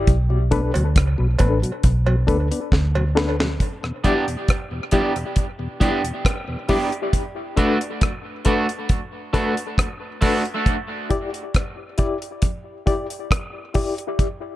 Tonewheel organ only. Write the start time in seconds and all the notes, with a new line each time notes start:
0.30 B2 F#3
0.51 A3 B3 D4
0.74 B2 F#3
1.18 B2 F#3
1.39 A3 B3 D4
1.62 B2 F#3
2.07 B2 F#3
2.27 A3 B3 D4
2.51 B3 D4
2.95 B2 F#3
3.16 A3 B3 D4
3.39 B2 F#3
3.83 E2 B2
4.04 G3 D4 E4
4.27 E2 B2
4.71 E2 B2
4.92 G3 D4 E4
5.16 E2 B2
5.59 E2 B2
5.80 G3 D4 E4
6.04 E2 B2
6.48 E2 B2
6.68 G3 D4 E4